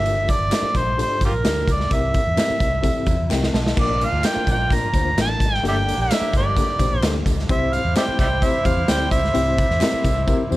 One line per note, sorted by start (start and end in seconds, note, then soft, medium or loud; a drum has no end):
0.00 0.27 G1 loud
0.00 0.37 D4 medium
0.00 0.37 F4 medium
0.00 0.37 G4 medium
0.00 0.38 A#4 medium
0.00 0.32 E5 medium
0.05 closed hi-hat medium
0.05 tambourine soft
0.28 0.79 D5 loud
0.28 kick medium
0.28 closed hi-hat medium
0.28 tambourine soft
0.39 0.48 G1 medium
0.51 0.81 D4 medium
0.51 0.81 F4 medium
0.51 0.82 G4 medium
0.51 0.82 A#4 medium
0.51 snare loud
0.51 clap medium
0.51 closed hi-hat loud
0.51 tambourine medium
0.62 muted fingered electric bass stroke soft
0.75 1.02 A#1 medium
0.75 0.99 C5 medium
0.75 kick medium
0.75 closed hi-hat medium
0.75 tambourine medium
0.97 1.28 D4 medium
0.97 1.28 F4 medium
0.97 1.28 G4 medium
0.97 1.28 A4 medium
0.97 closed hi-hat medium
0.97 tambourine medium
1.02 1.22 C5 medium
1.21 1.30 G1 medium
1.21 1.34 F4 medium
1.21 1.31 G4 medium
1.21 1.73 A#4 medium
1.21 kick medium
1.21 closed hi-hat medium
1.21 tambourine medium
1.32 1.42 A#1 medium
1.43 1.63 D2 medium
1.43 1.74 D4 medium
1.43 1.74 F4 medium
1.43 1.75 G4 medium
1.43 1.75 A#4 medium
1.43 snare loud
1.43 clap medium
1.43 closed hi-hat loud
1.43 tambourine medium
1.67 1.86 C#2 medium
1.67 kick medium
1.67 closed hi-hat medium
1.67 tambourine medium
1.72 1.96 D5 medium
1.80 snare soft
1.89 2.18 C2 medium
1.89 2.21 C4 medium
1.89 2.21 E4 medium
1.89 2.21 G4 medium
1.89 2.21 A#4 medium
1.89 kick loud
1.89 closed hi-hat medium
1.89 tambourine soft
1.94 3.33 E5 medium
2.14 kick medium
2.14 closed hi-hat medium
2.14 tambourine soft
2.27 2.36 E2 medium
2.36 2.67 C4 medium
2.36 2.67 E4 medium
2.36 2.68 G4 medium
2.36 2.68 A#4 medium
2.36 snare loud
2.36 clap medium
2.36 closed hi-hat medium
2.36 tambourine medium
2.50 muted fingered electric bass stroke soft
2.60 2.88 C2 medium
2.60 kick medium
2.60 closed hi-hat medium
2.60 tambourine medium
2.82 3.14 C4 medium
2.82 3.14 E4 medium
2.82 3.14 G4 medium
2.82 3.14 A4 loud
2.82 kick medium
2.82 closed hi-hat medium
2.82 tambourine medium
3.06 3.16 E2 medium
3.06 3.29 E5 medium
3.06 kick medium
3.06 closed hi-hat medium
3.06 tambourine medium
3.20 3.29 E2 medium
3.29 3.49 C2 medium
3.29 3.60 C4 medium
3.29 3.61 E4 medium
3.29 3.61 G4 medium
3.29 3.61 A#4 medium
3.29 3.52 G5 medium
3.29 snare medium
3.29 clap medium
3.29 tambourine medium
3.43 snare medium
3.54 3.72 B1 medium
3.54 3.76 A5 medium
3.54 snare medium
3.54 tambourine soft
3.67 snare medium
3.77 4.05 A#1 loud
3.77 4.07 A#3 loud
3.77 5.37 A#3 medium
3.77 4.08 D4 medium
3.77 5.38 D4 medium
3.77 5.37 F4 medium
3.77 4.08 F4 medium
3.77 4.08 A#4 loud
3.77 4.06 D5 medium
3.77 kick loud
3.77 crash loud
3.77 tambourine soft
4.01 4.28 F5 medium
4.01 closed hi-hat medium
4.12 4.22 D2 loud
4.24 4.54 A#3 medium
4.24 4.55 D4 medium
4.24 4.55 F4 medium
4.24 4.55 A#4 medium
4.24 4.49 G5 loud
4.24 snare loud
4.24 clap medium
4.24 closed hi-hat loud
4.24 tambourine medium
4.36 muted fingered electric bass stroke soft
4.47 4.83 A#1 medium
4.47 kick medium
4.47 closed hi-hat medium
4.47 tambourine medium
4.52 4.76 G5 loud
4.70 4.86 A#3 medium
4.70 4.87 D4 medium
4.70 4.87 F4 medium
4.70 4.87 A#4 medium
4.70 kick medium
4.70 closed hi-hat medium
4.70 tambourine medium
4.75 5.19 A#5 loud
4.93 5.12 D2 medium
4.93 5.10 A#3 medium
4.93 5.10 D4 medium
4.93 5.10 F4 medium
4.93 5.10 C5 medium
4.93 kick medium
4.93 closed hi-hat medium
4.93 tambourine medium
5.17 5.35 A1 medium
5.17 5.47 A#3 medium
5.17 5.47 D4 medium
5.17 5.47 F4 medium
5.17 5.48 A#4 medium
5.17 snare loud
5.17 clap medium
5.17 closed hi-hat medium
5.17 tambourine medium
5.21 5.63 A5 loud
5.40 5.58 G#1 medium
5.40 kick medium
5.40 closed hi-hat medium
5.40 tambourine medium
5.54 snare soft
5.63 5.91 G1 loud
5.63 5.94 A#3 loud
5.63 7.23 A#3 medium
5.63 7.23 D4 medium
5.63 5.94 D4 medium
5.63 5.94 G4 medium
5.63 7.23 G4 medium
5.63 5.94 A4 loud
5.63 closed hi-hat medium
5.68 5.76 D5 medium
5.68 5.76 E5 medium
5.68 5.99 G5 medium
5.88 closed hi-hat medium
5.88 tambourine soft
5.98 6.07 A#1 medium
6.02 6.33 E5 medium
6.11 6.41 A#3 medium
6.11 6.41 D4 medium
6.11 6.41 G4 medium
6.11 6.41 A4 medium
6.11 snare loud
6.11 clap medium
6.11 closed hi-hat loud
6.11 tambourine medium
6.21 muted fingered electric bass stroke soft
6.33 6.60 G1 medium
6.33 kick medium
6.33 closed hi-hat medium
6.33 tambourine medium
6.37 6.99 D5 medium
6.57 6.72 A#3 medium
6.57 6.72 D4 medium
6.57 6.72 G4 medium
6.57 6.73 A4 medium
6.57 kick medium
6.57 closed hi-hat medium
6.57 tambourine medium
6.79 6.88 A#1 medium
6.79 6.95 A#3 medium
6.79 6.95 D4 medium
6.79 6.95 G4 medium
6.79 6.96 C5 medium
6.79 kick medium
6.79 closed hi-hat medium
6.79 tambourine medium
6.91 7.00 A#1 medium
6.99 7.21 D2 loud
6.99 7.24 C5 medium
6.99 snare loud
6.99 closed hi-hat medium
7.03 7.34 A#3 medium
7.03 7.34 D4 medium
7.03 7.34 G4 medium
7.03 7.34 A4 medium
7.03 clap medium
7.03 tambourine medium
7.26 7.44 C#2 medium
7.26 kick medium
7.26 closed hi-hat medium
7.26 tambourine medium
7.39 snare soft
7.49 7.77 C2 loud
7.49 7.80 C4 loud
7.49 10.57 E4 medium
7.49 7.80 E4 medium
7.49 10.57 G4 medium
7.49 7.80 G4 loud
7.49 10.57 C5 medium
7.49 7.80 C5 loud
7.49 7.75 E5 medium
7.49 kick loud
7.49 closed hi-hat medium
7.73 7.96 F5 medium
7.73 closed hi-hat medium
7.73 tambourine soft
7.85 7.94 E2 medium
7.96 8.26 C4 medium
7.96 8.26 E4 medium
7.96 8.26 G4 medium
7.96 8.26 C5 medium
7.96 8.04 D5 medium
7.96 8.04 E5 medium
7.96 8.18 G5 loud
7.96 snare loud
7.96 clap medium
7.96 closed hi-hat loud
7.96 tambourine medium
8.08 muted fingered electric bass stroke soft
8.19 8.46 C2 medium
8.19 8.27 D5 medium
8.19 8.27 E5 medium
8.19 8.45 G5 medium
8.19 kick medium
8.19 closed hi-hat medium
8.19 tambourine medium
8.42 8.58 C4 medium
8.42 8.58 E4 medium
8.42 8.58 G4 medium
8.42 8.58 C5 medium
8.42 8.67 E5 medium
8.42 kick medium
8.42 closed hi-hat medium
8.42 tambourine medium
8.65 8.74 E2 medium
8.65 8.80 C4 medium
8.65 8.80 E4 medium
8.65 8.81 G4 medium
8.65 8.81 C5 medium
8.65 8.91 F5 medium
8.65 kick medium
8.65 closed hi-hat medium
8.65 tambourine medium
8.77 8.86 E2 medium
8.88 9.07 D2 medium
8.88 9.18 C4 medium
8.88 9.18 E4 medium
8.88 9.19 G4 medium
8.88 9.19 D5 medium
8.88 9.11 G5 loud
8.88 snare loud
8.88 clap medium
8.88 closed hi-hat loud
8.88 tambourine medium
9.11 9.29 C#2 medium
9.11 10.57 E5 medium
9.11 kick medium
9.11 closed hi-hat medium
9.11 tambourine medium
9.25 snare soft
9.34 9.62 C2 medium
9.34 9.64 C4 loud
9.34 9.65 E4 medium
9.34 9.65 G4 medium
9.34 9.65 C5 loud
9.34 closed hi-hat medium
9.34 tambourine soft
9.58 kick loud
9.58 closed hi-hat medium
9.58 tambourine soft
9.70 9.79 E2 medium
9.70 snare soft
9.80 10.11 C4 medium
9.80 10.11 E4 medium
9.80 10.11 G4 medium
9.80 10.12 A#4 medium
9.80 snare loud
9.80 clap medium
9.80 closed hi-hat loud
9.80 tambourine medium
9.93 muted fingered electric bass stroke soft
10.04 10.31 C2 medium
10.04 kick medium
10.04 closed hi-hat medium
10.04 tambourine medium
10.27 10.42 C4 loud
10.27 10.43 E4 medium
10.27 10.43 G4 medium
10.27 10.43 A#4 loud
10.27 kick medium
10.27 tambourine medium
10.51 10.57 E2 medium
10.51 10.57 C4 medium
10.51 10.57 E4 medium
10.51 10.57 G4 medium
10.51 10.57 C5 loud
10.51 tambourine medium